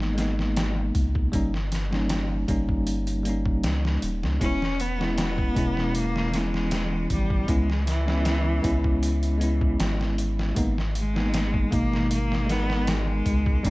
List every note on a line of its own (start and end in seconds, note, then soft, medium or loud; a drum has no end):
0.00 0.91 G#1 medium
0.00 0.13 G#3 medium
0.00 0.14 A#3 medium
0.00 0.15 B3 medium
0.00 0.15 D#4 loud
0.00 snare soft
0.15 1.27 G#3 medium
0.15 1.28 A#3 medium
0.15 snare medium
0.15 closed hi-hat medium
0.19 1.30 B3 medium
0.19 1.31 D#4 medium
0.39 snare soft
0.57 snare loud
0.57 closed hi-hat medium
0.95 1.29 C#2 loud
0.95 kick medium
0.95 closed hi-hat medium
1.15 kick medium
1.32 2.45 G1 medium
1.32 1.51 G3 medium
1.32 1.51 A#3 medium
1.32 1.52 C#4 medium
1.32 1.53 D#4 loud
1.32 kick medium
1.32 closed hi-hat medium
1.54 snare soft
1.72 snare soft
1.72 closed hi-hat medium
1.91 2.44 G3 medium
1.91 2.44 A#3 medium
1.91 2.45 C#4 medium
1.91 2.45 D#4 loud
1.91 snare soft
2.09 snare loud
2.09 closed hi-hat medium
2.48 3.65 G1 medium
2.48 3.21 G3 medium
2.48 3.21 A#3 medium
2.48 3.22 C#4 medium
2.48 3.22 D#4 loud
2.48 kick medium
2.48 closed hi-hat medium
2.69 kick medium
2.87 closed hi-hat medium
3.07 closed hi-hat soft
3.23 4.36 G3 medium
3.23 4.36 A#3 medium
3.23 closed hi-hat medium
3.27 4.38 C#4 medium
3.27 4.39 D#4 medium
3.46 kick medium
3.64 3.98 C#2 medium
3.64 snare loud
3.64 closed hi-hat medium
3.85 snare soft
4.02 4.25 D#1 medium
4.02 closed hi-hat medium
4.23 4.39 C#2 medium
4.23 snare soft
4.40 5.53 E1 medium
4.40 4.59 G#3 medium
4.40 4.59 B3 medium
4.40 4.60 C#4 medium
4.40 4.83 C#4 loud
4.40 4.60 E4 loud
4.40 kick loud
4.40 closed hi-hat medium
4.62 snare soft
4.80 5.19 B3 loud
4.80 closed hi-hat medium
4.99 5.52 G#3 medium
4.99 5.52 B3 medium
4.99 5.53 C#4 medium
4.99 5.53 E4 loud
4.99 snare soft
5.18 5.97 B3 medium
5.18 snare loud
5.18 closed hi-hat medium
5.38 kick medium
5.55 7.07 E1 medium
5.55 6.29 B2 medium
5.55 6.28 G#3 medium
5.55 6.29 C#4 medium
5.55 6.30 E4 loud
5.55 kick medium
5.55 closed hi-hat medium
5.77 snare soft
5.95 6.37 A#3 loud
5.95 closed hi-hat medium
6.16 snare soft
6.31 7.43 E3 medium
6.31 7.44 B3 medium
6.31 snare soft
6.31 closed hi-hat medium
6.35 7.11 G#3 loud
6.35 7.45 C#4 medium
6.35 7.46 E4 medium
6.54 snare soft
6.71 snare loud
6.71 closed hi-hat medium
7.10 7.44 G#1 loud
7.10 7.52 G3 medium
7.10 kick medium
7.10 closed hi-hat medium
7.30 kick loud
7.47 8.61 C#2 medium
7.47 7.66 G#3 loud
7.47 7.88 G#3 loud
7.47 7.67 B3 medium
7.47 7.67 C#4 medium
7.47 7.68 E4 loud
7.47 kick loud
7.47 closed hi-hat medium
7.70 snare soft
7.87 8.99 E3 medium
7.87 snare soft
7.87 closed hi-hat medium
8.06 8.59 G#3 medium
8.06 8.60 B3 medium
8.06 8.60 C#4 medium
8.06 8.61 E4 loud
8.06 snare soft
8.25 snare loud
8.25 closed hi-hat medium
8.62 9.76 C#2 medium
8.62 9.36 G#3 medium
8.62 9.36 B3 medium
8.62 9.37 C#4 medium
8.62 9.37 E4 loud
8.62 kick medium
8.62 closed hi-hat medium
8.84 kick medium
9.03 closed hi-hat medium
9.23 closed hi-hat soft
9.38 10.50 G#3 medium
9.38 10.51 B3 medium
9.38 10.52 C#4 medium
9.38 closed hi-hat medium
9.43 10.53 E4 medium
9.61 kick medium
9.80 10.53 G#1 medium
9.80 snare loud
9.80 closed hi-hat medium
10.01 snare soft
10.18 closed hi-hat medium
10.39 snare soft
10.55 11.68 G#1 medium
10.55 10.74 G#3 loud
10.55 10.75 A#3 medium
10.55 10.75 B3 medium
10.55 10.75 D#4 loud
10.55 kick medium
10.55 closed hi-hat medium
10.78 snare soft
10.95 11.75 G#3 loud
10.95 closed hi-hat medium
11.14 11.67 G#3 medium
11.14 11.67 A#3 medium
11.14 11.68 B3 medium
11.14 11.68 D#4 loud
11.14 snare soft
11.34 snare loud
11.34 closed hi-hat medium
11.54 kick medium
11.71 13.22 G#1 medium
11.71 12.45 B2 medium
11.71 12.44 G#3 medium
11.71 12.44 A#3 medium
11.71 12.11 A#3 loud
11.71 12.45 D#4 loud
11.71 kick medium
11.71 closed hi-hat medium
11.94 snare soft
12.11 12.52 A#3 loud
12.11 closed hi-hat medium
12.32 snare soft
12.46 13.59 G#3 medium
12.46 13.60 A#4 medium
12.46 snare medium
12.46 closed hi-hat medium
12.50 13.61 B3 medium
12.50 12.91 B3 loud
12.50 13.62 D#4 medium
12.70 snare soft
12.87 13.68 G#3 loud
12.87 snare loud
12.87 closed hi-hat medium
13.26 13.60 C#2 medium
13.26 kick medium
13.26 closed hi-hat medium
13.46 kick loud
13.63 13.70 G1 medium
13.63 13.70 G3 loud
13.63 13.70 A#3 medium
13.63 13.70 C#4 medium
13.63 13.70 D#4 loud
13.63 kick loud
13.63 closed hi-hat medium